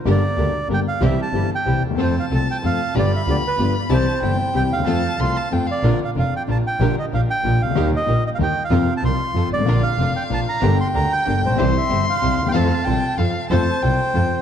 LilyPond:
<<
  \new Staff \with { instrumentName = "Violin" } { \time 3/4 \key f \major \tempo 4 = 188 r2. | r2. | a''2. | b''2. |
a''4 g''2 | a''4 c'''8 a''8 g''8 f''8 | \key bes \major r2. | r2. |
r2. | r2. | f''2. | g''2. |
c'''2. | f''4 g''4 f''4 | \key f \major a''4 g''2 | }
  \new Staff \with { instrumentName = "Bandoneon" } { \time 3/4 \key f \major d''2 g''8 f''8 | e''8 a''4 g''4 r8 | c''8 f''8 a''8 g''8 f''4 | d''8 e''8 d''8 b'4 r8 |
c''4. r8 g''8 f''8~ | f''2 r8 d''8~ | \key bes \major d''8 f''8 f''8 g''8 a''8 g''8~ | g''8 ees''8 f''8 g''4 f''8~ |
f''8 ees''4 ees''16 f''16 g''8. f''16~ | f''8. a''16 c'''4. d''8~ | d''8 f''4 g''8 a''8 bes''8~ | bes''8 c'''8 bes''8 g''4 c''8~ |
c''8 e''4 f''4~ f''16 g''16 | a''2 r4 | \key f \major c''2. | }
  \new Staff \with { instrumentName = "String section" } { \time 3/4 \key f \major <d' g' bes'>8 r8 <d' g' bes'>8 r8 <d' g' bes'>8 r8 | <c' e' g'>8 r8 <c' e' g'>8 r8 <c' e' g'>8 r8 | <c' f' a'>8 r8 <c' f' a'>8 r8 <c' f' a'>8 r8 | <b f' g'>8 r8 <b f' g'>8 r8 <b f' g'>8 r8 |
<c' e' g'>8 r8 <c' e' g'>8 r8 <c' e' g'>8 r8 | <c' f' a'>8 r8 <c' f' a'>8 r8 <c' f' a'>8 r8 | \key bes \major <d' f' bes'>8 r8 <d' f' bes'>8 r8 <d' f' bes'>8 r8 | <d' g' bes'>8 r8 <d' g' bes'>8 r8 <d' g' bes'>8 r8 |
<ees' g' bes'>8 r8 <ees' g' bes'>8 r8 <ees' g' bes'>8 r8 | <c' f' bes'>8 r8 <c' f' bes'>8 r8 <c' f' a'>8 r8 | <d' f' bes'>8 r8 <d' f' bes'>8 r8 <d' f' bes'>8 r8 | <d' g' bes'>8 r8 <d' g' bes'>8 r8 <d' g' bes'>8 r8 |
<e' g' c''>8 r8 <e' g' c''>8 r8 <e' g' c''>8 r8 | <f' a' c''>8 r8 <f' a' c''>8 r8 <f' a' c''>8 r8 | \key f \major <f' a' c''>8 r8 <f' a' c''>8 r8 <f' a' c''>8 r8 | }
  \new Staff \with { instrumentName = "Grand piano" } { \clef bass \time 3/4 \key f \major <g,, g, d g bes g'>8 r8 <d, d g bes g'>8 r8 <g,, g, d g bes g'>8 r8 | <c, c e g c' g'>8 r8 <g,, g, e g c' g'>8 r8 <c, c e g c' g'>8 r32 d,32 ees,32 e,32 | <f, f a c' a'>8 r8 <c, c f a c' a'>8 r8 <f, f a c' a'>8 r8 | <g,, g, f b d' g'>8 r8 <d, d f b d' g'>8 r8 <g,, g, f b d' g'>8 r8 |
<c, c e g c' g'>8 r8 <g,, g, e g c' g'>8 r8 <c, c e g c' g'>8 r32 d,32 ees,32 e,32 | <f, f a c' a'>8 r8 <c, c f a c' a'>8 r8 <f, f a c' a'>8 r8 | \key bes \major <bes,, bes, d f bes f'>8 r8 <f,, f,>8 r8 <bes,, bes,>8 r8 | <bes,, bes, d g bes g'>8 r8 <bes,, bes,>8 r8 <bes,, bes,>8 r32 c,32 des,32 d,32 |
<ees, ees g bes g'>8 r8 <bes,, bes,>8 r8 <ees, ees>8 r8 | <f, c f bes f'>8 r8 <c, c>8 r8 <f, f>8 r32 g,,32 aes,,32 a,,32 | <bes,, bes, d f bes f'>8 r8 <f,, f,>8 r8 <bes,, bes,>8 r8 | <g,, g, d g bes g'>8 r8 <d, d>8 r8 <g,, g,>8 r32 a,,32 bes,,32 ces,32 |
<c, c e g c' g'>8 r8 <g,, g,>8 r8 <c, c>8 r32 d,32 ees,32 e,32 | <f, f a c' a'>8 r8 <c, c>8 r8 <f, f>8 r8 | \key f \major <f, f a c' a'>8 r8 <c, c>8 r8 <f, f>8 r8 | }
  \new Staff \with { instrumentName = "Double bass" } { \clef bass \time 3/4 \key f \major g,,8 r8 d,8 r8 g,,8 r8 | c,8 r8 g,,8 r8 c,8 ees,8 | f,8 r8 c,8 r8 f,8 r8 | g,,8 r8 d,8 r8 g,,8 r8 |
c,8 r8 g,,8 r8 c,8 ees,8 | f,8 r8 c,8 r8 f,8 r8 | \key bes \major bes,,8 r8 f,,8 r8 bes,,8 r8 | bes,,8 r8 bes,,8 r8 bes,,8 des,8 |
ees,8 r8 bes,,8 r8 ees,8 r8 | f,8 r8 c,8 r8 f,8 aes,,8 | bes,,8 r8 f,,8 r8 bes,,8 r8 | g,,8 r8 d,8 r8 g,,8 bes,,8 |
c,8 r8 g,,8 r8 c,8 ees,8 | f,8 r8 c,8 r8 f,8 r8 | \key f \major f,8 r8 c,8 r8 f,8 r8 | }
>>